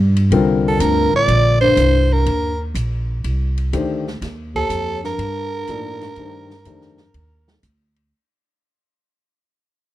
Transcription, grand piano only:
0.31 1.69 D3 medium
0.31 1.68 G3 medium
0.31 1.69 C4 medium
0.31 1.69 F4 medium
0.31 1.69 A#4 medium
3.73 4.03 D#3 medium
3.73 4.03 A3 medium
3.73 4.03 D4 soft
3.73 4.04 G4 medium
3.73 4.04 C5 medium
5.69 5.99 F3 medium
5.69 5.99 A#3 medium
5.69 5.99 D#4 medium
5.69 5.99 A4 medium
5.69 5.99 D5 medium
6.18 6.48 D#3 medium
6.18 6.48 A3 soft
6.18 6.48 D4 soft
6.18 6.48 G4 medium
6.18 6.48 C5 medium
6.66 6.96 D#3 medium
6.66 6.96 A3 soft
6.66 6.96 D4 soft
6.66 6.96 G4 soft
6.66 6.96 C5 medium

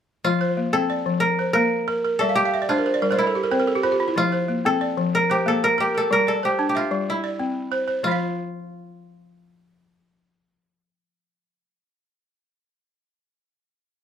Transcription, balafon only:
0.25 0.57 F3 medium
0.41 0.90 C5 medium
0.57 1.06 A#3 medium
0.73 1.06 C4 medium
0.90 1.39 D5 medium
1.06 1.23 F3 medium
1.39 1.88 C5 medium
1.55 1.88 A#3 medium
1.88 2.03 A#4 medium
2.04 2.37 A#4 medium
2.21 2.53 G3 medium
2.21 2.36 E5 medium
2.29 2.44 F5 medium
2.37 2.52 G5 medium
2.45 2.60 F5 medium
2.54 2.69 E5 medium
2.62 2.77 D5 medium
2.70 3.02 D4 medium
2.70 2.85 C5 medium
2.78 2.93 A#4 medium
2.86 3.01 C5 medium
2.94 3.09 D5 medium
3.02 3.18 G3 medium
3.02 3.17 A#4 medium
3.10 3.26 C5 medium
3.18 3.34 A#4 medium
3.27 3.42 A4 medium
3.35 3.50 G4 medium
3.44 3.58 A#4 medium
3.51 3.84 C4 medium
3.51 3.67 C5 medium
3.60 3.75 A#4 medium
3.67 3.83 A4 medium
3.75 3.91 G4 medium
3.83 3.99 F4 medium
3.83 4.16 C5 medium
3.92 4.07 G4 medium
4.00 4.15 F4 medium
4.08 4.23 E4 medium
4.16 4.49 F3 medium
4.32 4.81 C5 medium
4.48 4.97 A#3 medium
4.65 4.98 C4 medium
4.81 5.30 D5 medium
4.97 5.14 F3 medium
5.30 5.79 C5 medium
5.46 5.79 A#3 medium
5.78 5.93 A#4 medium
5.94 6.27 A#4 medium
6.11 6.43 G3 medium
6.27 6.76 D5 medium
6.43 6.92 C5 medium
6.59 6.91 D4 medium
6.75 7.24 E5 medium
6.91 7.08 G3 medium
7.24 7.72 D5 medium
7.39 7.72 C4 medium
7.72 7.86 C5 medium
7.88 8.20 C5 medium
8.03 12.13 F3 medium
8.08 12.17 F4 medium
8.08 12.21 F5 medium

